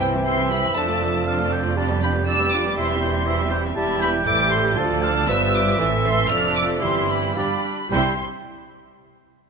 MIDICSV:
0, 0, Header, 1, 11, 480
1, 0, Start_track
1, 0, Key_signature, 0, "major"
1, 0, Tempo, 505476
1, 713, Time_signature, 2, 2, 24, 8
1, 5989, Tempo, 540054
1, 8825, End_track
2, 0, Start_track
2, 0, Title_t, "Violin section"
2, 0, Program_c, 0, 48
2, 8, Note_on_c, 0, 79, 59
2, 83, Note_off_c, 0, 79, 0
2, 250, Note_on_c, 0, 84, 58
2, 477, Note_off_c, 0, 84, 0
2, 493, Note_on_c, 0, 83, 72
2, 719, Note_off_c, 0, 83, 0
2, 722, Note_on_c, 0, 81, 58
2, 1441, Note_off_c, 0, 81, 0
2, 1923, Note_on_c, 0, 83, 55
2, 1999, Note_off_c, 0, 83, 0
2, 2162, Note_on_c, 0, 88, 67
2, 2394, Note_off_c, 0, 88, 0
2, 2403, Note_on_c, 0, 86, 60
2, 2635, Note_off_c, 0, 86, 0
2, 2635, Note_on_c, 0, 84, 57
2, 3329, Note_off_c, 0, 84, 0
2, 3815, Note_on_c, 0, 83, 64
2, 3891, Note_off_c, 0, 83, 0
2, 4046, Note_on_c, 0, 86, 78
2, 4283, Note_off_c, 0, 86, 0
2, 4290, Note_on_c, 0, 84, 61
2, 4531, Note_off_c, 0, 84, 0
2, 4775, Note_on_c, 0, 81, 70
2, 5000, Note_off_c, 0, 81, 0
2, 5024, Note_on_c, 0, 88, 80
2, 5261, Note_off_c, 0, 88, 0
2, 5271, Note_on_c, 0, 86, 65
2, 5507, Note_off_c, 0, 86, 0
2, 5754, Note_on_c, 0, 84, 70
2, 5976, Note_off_c, 0, 84, 0
2, 5978, Note_on_c, 0, 89, 81
2, 6212, Note_off_c, 0, 89, 0
2, 6216, Note_on_c, 0, 86, 71
2, 6287, Note_off_c, 0, 86, 0
2, 6448, Note_on_c, 0, 84, 57
2, 6676, Note_on_c, 0, 83, 56
2, 6679, Note_off_c, 0, 84, 0
2, 6923, Note_off_c, 0, 83, 0
2, 6941, Note_on_c, 0, 83, 55
2, 7422, Note_off_c, 0, 83, 0
2, 7435, Note_on_c, 0, 84, 50
2, 7698, Note_off_c, 0, 84, 0
2, 8825, End_track
3, 0, Start_track
3, 0, Title_t, "Oboe"
3, 0, Program_c, 1, 68
3, 241, Note_on_c, 1, 76, 59
3, 1203, Note_on_c, 1, 77, 50
3, 1217, Note_off_c, 1, 76, 0
3, 1443, Note_on_c, 1, 79, 51
3, 1457, Note_off_c, 1, 77, 0
3, 1674, Note_off_c, 1, 79, 0
3, 1680, Note_on_c, 1, 81, 53
3, 1914, Note_off_c, 1, 81, 0
3, 1925, Note_on_c, 1, 79, 50
3, 2148, Note_off_c, 1, 79, 0
3, 2154, Note_on_c, 1, 74, 51
3, 2620, Note_off_c, 1, 74, 0
3, 2629, Note_on_c, 1, 76, 47
3, 2852, Note_off_c, 1, 76, 0
3, 2858, Note_on_c, 1, 72, 46
3, 3098, Note_on_c, 1, 76, 52
3, 3112, Note_off_c, 1, 72, 0
3, 3330, Note_off_c, 1, 76, 0
3, 3336, Note_on_c, 1, 79, 49
3, 3443, Note_off_c, 1, 79, 0
3, 3567, Note_on_c, 1, 81, 65
3, 3804, Note_on_c, 1, 79, 61
3, 3818, Note_off_c, 1, 81, 0
3, 4529, Note_on_c, 1, 81, 66
3, 4543, Note_off_c, 1, 79, 0
3, 4768, Note_on_c, 1, 77, 61
3, 4782, Note_off_c, 1, 81, 0
3, 5008, Note_off_c, 1, 77, 0
3, 5014, Note_on_c, 1, 76, 73
3, 6629, Note_off_c, 1, 76, 0
3, 6931, Note_on_c, 1, 74, 38
3, 7162, Note_off_c, 1, 74, 0
3, 7416, Note_on_c, 1, 72, 49
3, 7620, Note_off_c, 1, 72, 0
3, 8825, End_track
4, 0, Start_track
4, 0, Title_t, "Flute"
4, 0, Program_c, 2, 73
4, 0, Note_on_c, 2, 79, 49
4, 709, Note_on_c, 2, 74, 49
4, 723, Note_off_c, 2, 79, 0
4, 2630, Note_off_c, 2, 74, 0
4, 2638, Note_on_c, 2, 76, 49
4, 3361, Note_off_c, 2, 76, 0
4, 3576, Note_on_c, 2, 76, 46
4, 4016, Note_off_c, 2, 76, 0
4, 4050, Note_on_c, 2, 76, 59
4, 4531, Note_on_c, 2, 74, 60
4, 4545, Note_off_c, 2, 76, 0
4, 5016, Note_off_c, 2, 74, 0
4, 5020, Note_on_c, 2, 74, 57
4, 5503, Note_on_c, 2, 76, 59
4, 5517, Note_off_c, 2, 74, 0
4, 5993, Note_on_c, 2, 74, 57
4, 6006, Note_off_c, 2, 76, 0
4, 6443, Note_on_c, 2, 76, 53
4, 6457, Note_off_c, 2, 74, 0
4, 6924, Note_on_c, 2, 77, 43
4, 6937, Note_off_c, 2, 76, 0
4, 7176, Note_off_c, 2, 77, 0
4, 7418, Note_on_c, 2, 79, 44
4, 7689, Note_off_c, 2, 79, 0
4, 8825, End_track
5, 0, Start_track
5, 0, Title_t, "Clarinet"
5, 0, Program_c, 3, 71
5, 0, Note_on_c, 3, 72, 44
5, 680, Note_off_c, 3, 72, 0
5, 720, Note_on_c, 3, 69, 48
5, 1677, Note_on_c, 3, 67, 46
5, 1691, Note_off_c, 3, 69, 0
5, 3562, Note_off_c, 3, 67, 0
5, 3568, Note_on_c, 3, 67, 53
5, 4056, Note_on_c, 3, 69, 53
5, 4070, Note_off_c, 3, 67, 0
5, 4528, Note_off_c, 3, 69, 0
5, 4533, Note_on_c, 3, 69, 58
5, 5020, Note_on_c, 3, 71, 58
5, 5034, Note_off_c, 3, 69, 0
5, 5502, Note_on_c, 3, 69, 51
5, 5516, Note_off_c, 3, 71, 0
5, 5979, Note_off_c, 3, 69, 0
5, 5985, Note_on_c, 3, 69, 52
5, 6449, Note_on_c, 3, 67, 55
5, 6462, Note_off_c, 3, 69, 0
5, 6785, Note_off_c, 3, 67, 0
5, 6928, Note_on_c, 3, 67, 46
5, 7040, Note_off_c, 3, 67, 0
5, 7417, Note_on_c, 3, 64, 47
5, 7621, Note_off_c, 3, 64, 0
5, 8825, End_track
6, 0, Start_track
6, 0, Title_t, "Violin section"
6, 0, Program_c, 4, 48
6, 14, Note_on_c, 4, 64, 37
6, 14, Note_on_c, 4, 72, 34
6, 124, Note_off_c, 4, 64, 0
6, 124, Note_off_c, 4, 72, 0
6, 133, Note_on_c, 4, 76, 36
6, 135, Note_on_c, 4, 67, 35
6, 243, Note_off_c, 4, 76, 0
6, 244, Note_off_c, 4, 67, 0
6, 251, Note_on_c, 4, 72, 42
6, 252, Note_on_c, 4, 64, 41
6, 354, Note_off_c, 4, 72, 0
6, 355, Note_off_c, 4, 64, 0
6, 364, Note_on_c, 4, 76, 39
6, 366, Note_on_c, 4, 67, 42
6, 478, Note_off_c, 4, 76, 0
6, 479, Note_off_c, 4, 67, 0
6, 485, Note_on_c, 4, 72, 43
6, 487, Note_on_c, 4, 64, 38
6, 599, Note_off_c, 4, 72, 0
6, 600, Note_off_c, 4, 64, 0
6, 611, Note_on_c, 4, 76, 38
6, 619, Note_on_c, 4, 67, 39
6, 722, Note_off_c, 4, 76, 0
6, 726, Note_off_c, 4, 67, 0
6, 731, Note_on_c, 4, 62, 41
6, 732, Note_on_c, 4, 69, 44
6, 835, Note_off_c, 4, 62, 0
6, 836, Note_off_c, 4, 69, 0
6, 849, Note_on_c, 4, 65, 40
6, 851, Note_on_c, 4, 74, 38
6, 962, Note_off_c, 4, 65, 0
6, 963, Note_off_c, 4, 74, 0
6, 971, Note_on_c, 4, 62, 33
6, 975, Note_on_c, 4, 69, 37
6, 1083, Note_off_c, 4, 62, 0
6, 1086, Note_off_c, 4, 69, 0
6, 1100, Note_on_c, 4, 65, 37
6, 1100, Note_on_c, 4, 74, 35
6, 1208, Note_off_c, 4, 65, 0
6, 1208, Note_off_c, 4, 74, 0
6, 1224, Note_on_c, 4, 62, 42
6, 1225, Note_on_c, 4, 69, 38
6, 1323, Note_off_c, 4, 62, 0
6, 1323, Note_off_c, 4, 69, 0
6, 1341, Note_on_c, 4, 65, 37
6, 1345, Note_on_c, 4, 74, 40
6, 1448, Note_on_c, 4, 62, 38
6, 1449, Note_off_c, 4, 65, 0
6, 1451, Note_off_c, 4, 74, 0
6, 1455, Note_on_c, 4, 69, 37
6, 1562, Note_off_c, 4, 62, 0
6, 1566, Note_off_c, 4, 69, 0
6, 1569, Note_on_c, 4, 74, 35
6, 1575, Note_on_c, 4, 65, 37
6, 1678, Note_off_c, 4, 65, 0
6, 1680, Note_off_c, 4, 74, 0
6, 1689, Note_on_c, 4, 65, 41
6, 1691, Note_on_c, 4, 74, 44
6, 1795, Note_off_c, 4, 65, 0
6, 1796, Note_off_c, 4, 74, 0
6, 1801, Note_on_c, 4, 67, 40
6, 1802, Note_on_c, 4, 71, 40
6, 1920, Note_off_c, 4, 67, 0
6, 1920, Note_off_c, 4, 71, 0
6, 1924, Note_on_c, 4, 74, 35
6, 1929, Note_on_c, 4, 65, 35
6, 2041, Note_off_c, 4, 74, 0
6, 2044, Note_off_c, 4, 65, 0
6, 2049, Note_on_c, 4, 71, 37
6, 2050, Note_on_c, 4, 67, 34
6, 2163, Note_on_c, 4, 65, 38
6, 2164, Note_off_c, 4, 71, 0
6, 2165, Note_off_c, 4, 67, 0
6, 2166, Note_on_c, 4, 74, 38
6, 2272, Note_off_c, 4, 65, 0
6, 2274, Note_off_c, 4, 74, 0
6, 2278, Note_on_c, 4, 67, 37
6, 2281, Note_on_c, 4, 71, 39
6, 2397, Note_off_c, 4, 67, 0
6, 2398, Note_off_c, 4, 71, 0
6, 2401, Note_on_c, 4, 74, 41
6, 2403, Note_on_c, 4, 65, 41
6, 2517, Note_off_c, 4, 74, 0
6, 2517, Note_on_c, 4, 67, 37
6, 2518, Note_off_c, 4, 65, 0
6, 2519, Note_on_c, 4, 71, 38
6, 2633, Note_off_c, 4, 67, 0
6, 2634, Note_off_c, 4, 71, 0
6, 2634, Note_on_c, 4, 64, 42
6, 2636, Note_on_c, 4, 72, 43
6, 2742, Note_off_c, 4, 64, 0
6, 2743, Note_off_c, 4, 72, 0
6, 2748, Note_on_c, 4, 76, 40
6, 2751, Note_on_c, 4, 67, 38
6, 2866, Note_off_c, 4, 76, 0
6, 2868, Note_off_c, 4, 67, 0
6, 2872, Note_on_c, 4, 72, 38
6, 2874, Note_on_c, 4, 64, 36
6, 2982, Note_on_c, 4, 67, 38
6, 2986, Note_on_c, 4, 76, 37
6, 2988, Note_off_c, 4, 72, 0
6, 2989, Note_off_c, 4, 64, 0
6, 3096, Note_on_c, 4, 64, 42
6, 3103, Note_off_c, 4, 67, 0
6, 3104, Note_off_c, 4, 76, 0
6, 3104, Note_on_c, 4, 72, 44
6, 3211, Note_off_c, 4, 64, 0
6, 3215, Note_off_c, 4, 72, 0
6, 3226, Note_on_c, 4, 67, 44
6, 3226, Note_on_c, 4, 76, 43
6, 3343, Note_off_c, 4, 67, 0
6, 3343, Note_off_c, 4, 76, 0
6, 3351, Note_on_c, 4, 72, 39
6, 3353, Note_on_c, 4, 64, 40
6, 3463, Note_on_c, 4, 76, 38
6, 3465, Note_off_c, 4, 72, 0
6, 3465, Note_on_c, 4, 67, 39
6, 3466, Note_off_c, 4, 64, 0
6, 3567, Note_off_c, 4, 67, 0
6, 3568, Note_off_c, 4, 76, 0
6, 3578, Note_on_c, 4, 67, 45
6, 3579, Note_on_c, 4, 76, 44
6, 4017, Note_off_c, 4, 67, 0
6, 4018, Note_off_c, 4, 76, 0
6, 4051, Note_on_c, 4, 69, 49
6, 4060, Note_on_c, 4, 72, 51
6, 4532, Note_off_c, 4, 69, 0
6, 4536, Note_off_c, 4, 72, 0
6, 4537, Note_on_c, 4, 74, 53
6, 4543, Note_on_c, 4, 69, 55
6, 5012, Note_off_c, 4, 69, 0
6, 5019, Note_off_c, 4, 74, 0
6, 5020, Note_on_c, 4, 76, 52
6, 5024, Note_on_c, 4, 71, 56
6, 5502, Note_off_c, 4, 76, 0
6, 5504, Note_off_c, 4, 71, 0
6, 5509, Note_on_c, 4, 69, 54
6, 5513, Note_on_c, 4, 76, 55
6, 5985, Note_off_c, 4, 76, 0
6, 5988, Note_off_c, 4, 69, 0
6, 5997, Note_on_c, 4, 74, 52
6, 5999, Note_on_c, 4, 69, 52
6, 6445, Note_off_c, 4, 69, 0
6, 6452, Note_off_c, 4, 74, 0
6, 6456, Note_on_c, 4, 72, 47
6, 6459, Note_on_c, 4, 67, 47
6, 6923, Note_off_c, 4, 67, 0
6, 6931, Note_off_c, 4, 72, 0
6, 6943, Note_on_c, 4, 74, 42
6, 6948, Note_on_c, 4, 67, 44
6, 7019, Note_off_c, 4, 67, 0
6, 7242, Note_off_c, 4, 74, 0
6, 7428, Note_on_c, 4, 67, 47
6, 7429, Note_on_c, 4, 72, 46
6, 7694, Note_off_c, 4, 67, 0
6, 7694, Note_off_c, 4, 72, 0
6, 8825, End_track
7, 0, Start_track
7, 0, Title_t, "French horn section"
7, 0, Program_c, 5, 60
7, 0, Note_on_c, 5, 60, 52
7, 0, Note_on_c, 5, 64, 52
7, 679, Note_off_c, 5, 64, 0
7, 680, Note_off_c, 5, 60, 0
7, 696, Note_on_c, 5, 62, 52
7, 702, Note_on_c, 5, 57, 52
7, 2589, Note_off_c, 5, 57, 0
7, 2624, Note_off_c, 5, 62, 0
7, 2644, Note_on_c, 5, 55, 51
7, 2645, Note_on_c, 5, 64, 57
7, 3576, Note_off_c, 5, 55, 0
7, 3587, Note_on_c, 5, 55, 51
7, 4500, Note_off_c, 5, 64, 0
7, 4517, Note_off_c, 5, 55, 0
7, 4531, Note_on_c, 5, 62, 53
7, 4532, Note_on_c, 5, 53, 56
7, 5014, Note_on_c, 5, 59, 56
7, 5016, Note_off_c, 5, 62, 0
7, 5497, Note_on_c, 5, 52, 55
7, 5498, Note_off_c, 5, 59, 0
7, 5500, Note_off_c, 5, 53, 0
7, 5501, Note_on_c, 5, 60, 56
7, 5831, Note_off_c, 5, 52, 0
7, 5831, Note_off_c, 5, 60, 0
7, 5978, Note_on_c, 5, 62, 55
7, 5982, Note_on_c, 5, 53, 52
7, 6434, Note_off_c, 5, 62, 0
7, 6445, Note_off_c, 5, 53, 0
7, 6450, Note_on_c, 5, 60, 51
7, 6456, Note_on_c, 5, 52, 51
7, 6918, Note_off_c, 5, 60, 0
7, 6926, Note_on_c, 5, 53, 43
7, 6930, Note_on_c, 5, 62, 46
7, 6931, Note_off_c, 5, 52, 0
7, 7177, Note_off_c, 5, 53, 0
7, 7179, Note_off_c, 5, 62, 0
7, 7421, Note_on_c, 5, 55, 50
7, 7421, Note_on_c, 5, 64, 49
7, 7623, Note_off_c, 5, 55, 0
7, 7623, Note_off_c, 5, 64, 0
7, 8825, End_track
8, 0, Start_track
8, 0, Title_t, "Viola section"
8, 0, Program_c, 6, 48
8, 0, Note_on_c, 6, 55, 40
8, 0, Note_on_c, 6, 64, 41
8, 113, Note_off_c, 6, 64, 0
8, 114, Note_off_c, 6, 55, 0
8, 114, Note_on_c, 6, 52, 40
8, 118, Note_on_c, 6, 60, 43
8, 233, Note_off_c, 6, 52, 0
8, 235, Note_off_c, 6, 60, 0
8, 236, Note_on_c, 6, 55, 42
8, 236, Note_on_c, 6, 64, 42
8, 346, Note_off_c, 6, 55, 0
8, 346, Note_off_c, 6, 64, 0
8, 360, Note_on_c, 6, 52, 38
8, 364, Note_on_c, 6, 60, 38
8, 476, Note_off_c, 6, 52, 0
8, 478, Note_off_c, 6, 60, 0
8, 482, Note_on_c, 6, 55, 37
8, 484, Note_on_c, 6, 64, 38
8, 590, Note_on_c, 6, 60, 35
8, 592, Note_on_c, 6, 52, 36
8, 597, Note_off_c, 6, 55, 0
8, 599, Note_off_c, 6, 64, 0
8, 712, Note_off_c, 6, 60, 0
8, 713, Note_off_c, 6, 52, 0
8, 718, Note_on_c, 6, 53, 43
8, 719, Note_on_c, 6, 62, 36
8, 828, Note_off_c, 6, 53, 0
8, 829, Note_off_c, 6, 62, 0
8, 844, Note_on_c, 6, 65, 36
8, 845, Note_on_c, 6, 57, 37
8, 960, Note_off_c, 6, 57, 0
8, 960, Note_off_c, 6, 65, 0
8, 967, Note_on_c, 6, 53, 41
8, 969, Note_on_c, 6, 62, 40
8, 1081, Note_on_c, 6, 65, 40
8, 1082, Note_off_c, 6, 53, 0
8, 1082, Note_on_c, 6, 57, 37
8, 1083, Note_off_c, 6, 62, 0
8, 1199, Note_off_c, 6, 57, 0
8, 1199, Note_off_c, 6, 65, 0
8, 1204, Note_on_c, 6, 62, 44
8, 1205, Note_on_c, 6, 53, 43
8, 1312, Note_off_c, 6, 62, 0
8, 1313, Note_off_c, 6, 53, 0
8, 1319, Note_on_c, 6, 57, 39
8, 1321, Note_on_c, 6, 65, 40
8, 1429, Note_on_c, 6, 53, 35
8, 1429, Note_on_c, 6, 62, 35
8, 1438, Note_off_c, 6, 57, 0
8, 1439, Note_off_c, 6, 65, 0
8, 1547, Note_on_c, 6, 65, 36
8, 1549, Note_on_c, 6, 57, 36
8, 1553, Note_off_c, 6, 53, 0
8, 1553, Note_off_c, 6, 62, 0
8, 1672, Note_off_c, 6, 57, 0
8, 1672, Note_off_c, 6, 65, 0
8, 1674, Note_on_c, 6, 62, 39
8, 1676, Note_on_c, 6, 53, 42
8, 1787, Note_off_c, 6, 62, 0
8, 1788, Note_off_c, 6, 53, 0
8, 1794, Note_on_c, 6, 55, 38
8, 1795, Note_on_c, 6, 59, 36
8, 1915, Note_on_c, 6, 62, 38
8, 1916, Note_off_c, 6, 55, 0
8, 1916, Note_off_c, 6, 59, 0
8, 1916, Note_on_c, 6, 53, 35
8, 2030, Note_on_c, 6, 55, 39
8, 2031, Note_on_c, 6, 59, 39
8, 2037, Note_off_c, 6, 53, 0
8, 2037, Note_off_c, 6, 62, 0
8, 2155, Note_off_c, 6, 55, 0
8, 2155, Note_off_c, 6, 59, 0
8, 2156, Note_on_c, 6, 53, 43
8, 2157, Note_on_c, 6, 62, 42
8, 2269, Note_off_c, 6, 53, 0
8, 2269, Note_off_c, 6, 62, 0
8, 2290, Note_on_c, 6, 59, 40
8, 2291, Note_on_c, 6, 55, 34
8, 2402, Note_on_c, 6, 53, 39
8, 2403, Note_off_c, 6, 59, 0
8, 2404, Note_off_c, 6, 55, 0
8, 2404, Note_on_c, 6, 62, 37
8, 2517, Note_off_c, 6, 53, 0
8, 2518, Note_off_c, 6, 62, 0
8, 2523, Note_on_c, 6, 59, 36
8, 2525, Note_on_c, 6, 55, 34
8, 2636, Note_off_c, 6, 59, 0
8, 2637, Note_off_c, 6, 55, 0
8, 2644, Note_on_c, 6, 52, 45
8, 2649, Note_on_c, 6, 64, 42
8, 2748, Note_off_c, 6, 52, 0
8, 2750, Note_off_c, 6, 64, 0
8, 2764, Note_on_c, 6, 55, 35
8, 2767, Note_on_c, 6, 60, 36
8, 2874, Note_off_c, 6, 55, 0
8, 2874, Note_on_c, 6, 52, 39
8, 2875, Note_on_c, 6, 64, 40
8, 2876, Note_off_c, 6, 60, 0
8, 2989, Note_off_c, 6, 52, 0
8, 2990, Note_off_c, 6, 64, 0
8, 2997, Note_on_c, 6, 60, 40
8, 3001, Note_on_c, 6, 55, 41
8, 3110, Note_off_c, 6, 60, 0
8, 3111, Note_on_c, 6, 52, 48
8, 3112, Note_off_c, 6, 55, 0
8, 3112, Note_on_c, 6, 64, 46
8, 3218, Note_off_c, 6, 52, 0
8, 3219, Note_off_c, 6, 64, 0
8, 3233, Note_on_c, 6, 55, 42
8, 3233, Note_on_c, 6, 60, 41
8, 3340, Note_on_c, 6, 52, 37
8, 3341, Note_on_c, 6, 64, 40
8, 3347, Note_off_c, 6, 55, 0
8, 3347, Note_off_c, 6, 60, 0
8, 3454, Note_on_c, 6, 55, 36
8, 3459, Note_off_c, 6, 52, 0
8, 3459, Note_off_c, 6, 64, 0
8, 3460, Note_on_c, 6, 60, 41
8, 3571, Note_off_c, 6, 55, 0
8, 3577, Note_off_c, 6, 60, 0
8, 3580, Note_on_c, 6, 64, 47
8, 3582, Note_on_c, 6, 55, 43
8, 3658, Note_off_c, 6, 55, 0
8, 3818, Note_on_c, 6, 52, 55
8, 3894, Note_off_c, 6, 52, 0
8, 4018, Note_off_c, 6, 64, 0
8, 4054, Note_on_c, 6, 67, 54
8, 4055, Note_on_c, 6, 52, 53
8, 4524, Note_off_c, 6, 52, 0
8, 4531, Note_on_c, 6, 65, 51
8, 4532, Note_on_c, 6, 53, 51
8, 4533, Note_off_c, 6, 67, 0
8, 4770, Note_on_c, 6, 62, 55
8, 4773, Note_off_c, 6, 65, 0
8, 5007, Note_off_c, 6, 53, 0
8, 5009, Note_on_c, 6, 59, 59
8, 5011, Note_on_c, 6, 55, 60
8, 5014, Note_off_c, 6, 62, 0
8, 5496, Note_off_c, 6, 59, 0
8, 5497, Note_off_c, 6, 55, 0
8, 5498, Note_on_c, 6, 60, 47
8, 5501, Note_on_c, 6, 52, 50
8, 5577, Note_off_c, 6, 52, 0
8, 5741, Note_on_c, 6, 52, 53
8, 5817, Note_off_c, 6, 52, 0
8, 5977, Note_off_c, 6, 60, 0
8, 5986, Note_on_c, 6, 62, 54
8, 5990, Note_on_c, 6, 53, 51
8, 6440, Note_off_c, 6, 53, 0
8, 6447, Note_off_c, 6, 62, 0
8, 6449, Note_on_c, 6, 64, 46
8, 6455, Note_on_c, 6, 52, 43
8, 6924, Note_on_c, 6, 55, 44
8, 6926, Note_on_c, 6, 62, 46
8, 6927, Note_off_c, 6, 64, 0
8, 6930, Note_off_c, 6, 52, 0
8, 7232, Note_off_c, 6, 55, 0
8, 7233, Note_off_c, 6, 62, 0
8, 7425, Note_on_c, 6, 55, 47
8, 7426, Note_on_c, 6, 64, 41
8, 7692, Note_off_c, 6, 55, 0
8, 7693, Note_off_c, 6, 64, 0
8, 8825, End_track
9, 0, Start_track
9, 0, Title_t, "Bassoon"
9, 0, Program_c, 7, 70
9, 0, Note_on_c, 7, 52, 50
9, 718, Note_on_c, 7, 53, 49
9, 732, Note_off_c, 7, 52, 0
9, 1672, Note_off_c, 7, 53, 0
9, 1677, Note_on_c, 7, 55, 49
9, 3540, Note_off_c, 7, 55, 0
9, 3580, Note_on_c, 7, 55, 53
9, 4019, Note_off_c, 7, 55, 0
9, 4054, Note_on_c, 7, 55, 52
9, 4533, Note_on_c, 7, 53, 56
9, 4547, Note_off_c, 7, 55, 0
9, 4879, Note_off_c, 7, 53, 0
9, 5024, Note_on_c, 7, 53, 59
9, 5494, Note_off_c, 7, 53, 0
9, 5508, Note_on_c, 7, 52, 57
9, 5988, Note_on_c, 7, 53, 50
9, 6001, Note_off_c, 7, 52, 0
9, 6449, Note_on_c, 7, 55, 54
9, 6462, Note_off_c, 7, 53, 0
9, 6917, Note_off_c, 7, 55, 0
9, 6922, Note_on_c, 7, 55, 45
9, 7170, Note_off_c, 7, 55, 0
9, 7423, Note_on_c, 7, 55, 48
9, 7624, Note_off_c, 7, 55, 0
9, 8825, End_track
10, 0, Start_track
10, 0, Title_t, "Cello section"
10, 0, Program_c, 8, 48
10, 0, Note_on_c, 8, 48, 49
10, 677, Note_off_c, 8, 48, 0
10, 712, Note_on_c, 8, 41, 53
10, 2632, Note_off_c, 8, 41, 0
10, 2635, Note_on_c, 8, 40, 49
10, 3567, Note_off_c, 8, 40, 0
10, 3578, Note_on_c, 8, 40, 53
10, 4017, Note_off_c, 8, 40, 0
10, 4052, Note_on_c, 8, 45, 54
10, 4532, Note_off_c, 8, 45, 0
10, 4534, Note_on_c, 8, 38, 55
10, 5014, Note_on_c, 8, 43, 55
10, 5017, Note_off_c, 8, 38, 0
10, 5497, Note_on_c, 8, 45, 55
10, 5498, Note_off_c, 8, 43, 0
10, 5977, Note_off_c, 8, 45, 0
10, 5984, Note_on_c, 8, 41, 54
10, 6445, Note_on_c, 8, 43, 49
10, 6446, Note_off_c, 8, 41, 0
10, 6914, Note_off_c, 8, 43, 0
10, 6925, Note_on_c, 8, 43, 47
10, 6996, Note_off_c, 8, 43, 0
10, 7426, Note_on_c, 8, 48, 49
10, 7693, Note_off_c, 8, 48, 0
10, 8825, End_track
11, 0, Start_track
11, 0, Title_t, "Double bass section"
11, 0, Program_c, 10, 48
11, 0, Note_on_c, 10, 36, 48
11, 677, Note_off_c, 10, 36, 0
11, 718, Note_on_c, 10, 29, 47
11, 2627, Note_on_c, 10, 28, 49
11, 2634, Note_off_c, 10, 29, 0
11, 3569, Note_off_c, 10, 28, 0
11, 3581, Note_on_c, 10, 28, 51
11, 4019, Note_off_c, 10, 28, 0
11, 4049, Note_on_c, 10, 33, 55
11, 4527, Note_on_c, 10, 38, 56
11, 4531, Note_off_c, 10, 33, 0
11, 5009, Note_on_c, 10, 31, 60
11, 5014, Note_off_c, 10, 38, 0
11, 5496, Note_off_c, 10, 31, 0
11, 5502, Note_on_c, 10, 33, 59
11, 5979, Note_off_c, 10, 33, 0
11, 5979, Note_on_c, 10, 29, 62
11, 6440, Note_on_c, 10, 31, 54
11, 6444, Note_off_c, 10, 29, 0
11, 6915, Note_off_c, 10, 31, 0
11, 6926, Note_on_c, 10, 31, 47
11, 6997, Note_off_c, 10, 31, 0
11, 7423, Note_on_c, 10, 36, 55
11, 7691, Note_off_c, 10, 36, 0
11, 8825, End_track
0, 0, End_of_file